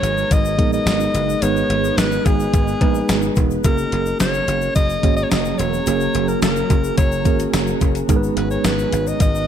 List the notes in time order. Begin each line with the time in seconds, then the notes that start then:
Already playing: G#3 B3 D#4 G#4 B4 C#5
0.02 G#1, closed hi-hat, shaker
0.18 shaker
0.31 G#1 D#5, kick, closed hi-hat, shaker
0.45 shaker
0.58 A#1 G#3 B3 D#4 G#4 A#4, kick, closed hi-hat
0.73 D#5, shaker
0.86 G#1, snare, closed hi-hat, tambourine, shaker
1.00 shaker
1.14 F#1, closed hi-hat, shaker
1.29 shaker
1.42 G#1 G#3 B3 D#4 G#4 B4 C#5, closed hi-hat, shaker
1.57 shaker
1.69 G#1, closed hi-hat
1.84 shaker
1.97 G#1 B4, snare, closed hi-hat, tambourine, shaker
2.12 shaker
2.26 G#1 G#4, kick, closed hi-hat, shaker
2.40 shaker
2.53 G#1, kick, closed hi-hat, shaker
2.68 shaker
2.81 A#1 G#3 B3 D#4 G#4 B4, kick, closed hi-hat
2.95 shaker
3.09 G#1, snare, closed hi-hat, tambourine, shaker
3.22 shaker
3.36 E1, kick, closed hi-hat, shaker
3.51 shaker
3.64 F#1 F#3 A#3 C#4 F#4 G#4 A#4, kick, closed hi-hat, shaker
3.78 shaker
3.92 F#1, closed hi-hat
4.06 shaker
4.20 F#1 C#5, snare, closed hi-hat, tambourine, shaker
4.34 shaker
4.48 F#1, closed hi-hat, shaker
4.62 shaker
4.75 F#1 D#5, kick, closed hi-hat, shaker
4.90 shaker
5.03 G#1 A#3 C#4 F#4 G#4 C#5, kick, closed hi-hat
5.17 D#5, shaker
5.24 C#5
5.30 F#1 D#5, snare, closed hi-hat, tambourine, shaker
5.45 shaker
5.58 E1 C#5, closed hi-hat, shaker
5.74 shaker
5.86 F#1 A#3 C#4 F#4 G#4 A#4, closed hi-hat, shaker
6.00 shaker
6.14 F#1, closed hi-hat, shaker
6.28 A#4, shaker
6.42 F#1 A#4, snare, closed hi-hat, tambourine, shaker
6.56 shaker
6.70 F#1, kick, closed hi-hat, shaker
6.84 shaker
6.98 F#1 C#5, kick, closed hi-hat, shaker
7.12 shaker
7.25 G#1 A#3 C#4 F#4 G#4 A#4, kick, closed hi-hat, shaker
7.39 closed hi-hat, shaker
7.53 F#1, snare, closed hi-hat, tambourine, shaker
7.67 shaker
7.81 F#1, kick, closed hi-hat, shaker
7.95 closed hi-hat, shaker
8.09 G#1 G#3 B3 D#4 G#4 A#4, kick, closed hi-hat, shaker
8.16 B4
8.23 shaker
8.36 G#1 B4, closed hi-hat
8.51 C#5, shaker
8.64 G#1 B4, snare, closed hi-hat, tambourine, shaker
8.79 shaker
8.93 G#1, closed hi-hat, shaker
9.07 D#5, shaker
9.20 G#1 D#5, kick, closed hi-hat, shaker
9.35 shaker